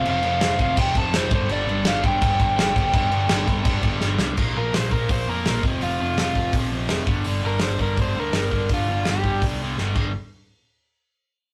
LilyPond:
<<
  \new Staff \with { instrumentName = "Overdriven electric guitar" } { \time 4/4 \key g \minor \tempo 4 = 166 f''4. f''8 g''8 a''8 c''8 c''8 | d''4 f''8 g''2~ g''8~ | g''2. r4 | r8 bes'8 c''8 bes'8 c''8 bes'4 r8 |
f'4 f'4 r2 | r8 bes'8 c''8 bes'8 c''8 bes'4. | f'4 g'4 r2 | r1 | }
  \new Staff \with { instrumentName = "Distorted electric guitar" } { \clef bass \time 4/4 \key g \minor <f, c f>8 <f, c f>8 <f, c f>8 <f, c f>8 <f, c f>8 <f, c f>8 <f, c f>8 <g, d g>8 | <g, d g>8 <g, d g>8 <g, d g>8 <g, d g>8 <g, d g>8 <g, d g>8 <g, d g>8 <g, d g>8 | <g, d g>8 <g, d g>8 <g, d g>8 <g, d g>8 <g, d g>8 <g, d g>8 <g, d g>8 <g, d g>8 | <bes, f bes>8 <bes, f bes>8 <bes, f bes>8 <bes, f bes>8 <bes, f bes>8 <bes, f bes>8 <bes, f bes>8 <f, c f>8 |
<f, c f>8 <f, c f>8 <f, c f>8 <f, c f>8 <f, c f>8 <f, c f>8 <f, c f>8 <g, d g>8 | <g, d g>8 <g, d g>8 <g, d g>8 <g, d g>8 <g, d g>8 <g, d g>8 <g, d g>8 <g, d g>8 | <g, d g>8 <g, d g>8 <g, d g>8 <g, d g>8 <g, d g>8 <g, d g>8 <g, d g>8 <g, d g>8 | r1 | }
  \new Staff \with { instrumentName = "Picked electric bass" } { \clef bass \time 4/4 \key g \minor f,,8 f,,8 f,,8 f,,8 f,,8 f,,8 f,,8 g,,8 | g,,8 g,,8 g,,4 g,,8 g,,8 g,,8 g,,8 | g,,8 g,,8 g,,8 g,,8 g,,8 g,,8 g,,8 c,8 | bes,,8 bes,,8 bes,,8 bes,,8 bes,,8 f,8 bes,,8 f,,8 |
f,,8 f,,8 f,,8 f,,8 bes,,4 f,,8 g,,8 | g,,8 g,,8 g,,8 g,,8 g,,8 d,8 g,,4 | g,,8 g,,8 g,,8 g,,8 c,4 g,,8 g,,8 | r1 | }
  \new DrumStaff \with { instrumentName = "Drums" } \drummode { \time 4/4 cymc8 cymc8 <cymc sn>8 <cymc bd>8 <cymc bd>8 <cymc bd>8 <cymc sn>8 <cymc bd>8 | cymc8 cymc8 <cymc sn>8 <cymc bd>8 <cymc bd>8 <cymc bd>8 <cymc sn>8 <cymc bd>8 | <cymc bd>8 cymc8 <cymc sn>8 <cymc bd>8 <cymc bd>8 <cymc bd>8 sn8 sn8 | <cymc bd>4 <hho sn>8 bd8 <hho bd>4 <hho sn>8 bd8 |
hho4 <hho sn>8 bd8 <hho bd>4 <hho sn>8 bd8 | hho4 <hho sn>8 bd8 <hho bd>4 <hho sn>8 bd8 | <hho bd>4 <hho sn>8 bd8 <hho bd>4 sn8 <cymc bd>8 | r4 r4 r4 r4 | }
>>